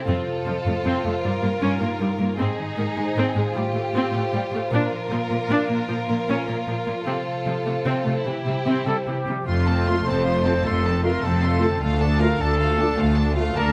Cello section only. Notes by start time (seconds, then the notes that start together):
0.08 F2
0.46 F2
0.66 F2
0.84 F2
1.04 F2
1.24 G2
1.42 G2
1.61 G2
1.81 G2
2.00 G2
2.19 G2
2.38 G#2
2.77 G#2
2.96 G#2
3.15 G#2
3.35 G#2
3.54 A2
3.74 A2
3.93 A2
4.13 A2
4.32 A2
4.52 A2
4.71 A#2
5.10 A#2
5.30 A#2
5.50 A#2
5.70 A#2
5.89 A#2
6.09 A#2
6.29 A#2
6.48 A#2
6.68 A#2
6.87 A#2
7.06 C3
7.45 C3
7.65 C3
7.86 C3
8.06 C3
8.26 C3
8.46 C3
8.66 C3
8.87 C3
9.07 C3
9.27 C3
9.47 F2
10.07 F2
10.66 F2
11.23 F2
11.82 D2
12.40 D2
12.97 D2
13.55 D2